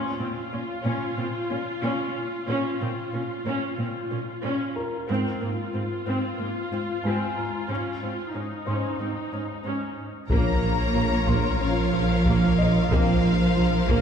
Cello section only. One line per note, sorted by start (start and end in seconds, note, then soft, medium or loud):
0.20 0.28 A#2 soft
0.53 0.61 A#2 soft
0.85 0.93 A#2 medium
1.18 1.26 A#2 soft
1.51 1.59 A#2 soft
1.83 1.91 A#2 medium
2.48 2.56 A#2 medium
2.81 2.89 A#2 soft
3.14 3.22 A#2 soft
3.46 3.54 A#2 medium
3.79 3.87 A#2 soft
4.11 4.19 A#2 soft
4.44 4.52 A#2 medium
5.09 5.17 G#2 medium
5.42 5.50 G#2 soft
5.74 5.82 G#2 soft
6.07 6.15 G#2 soft
6.39 6.47 G#2 soft
6.72 6.80 G#2 soft
7.05 7.13 G#2 soft
7.69 7.77 G#2 soft
8.02 8.10 G#2 soft
8.35 8.43 G#2 soft
8.67 8.75 G#2 soft
9.00 9.08 G#2 soft
9.32 9.40 G#2 soft
9.65 9.73 G#2 soft
10.30 11.57 A#3 medium
11.60 12.89 F3 medium
12.91 14.01 F3 medium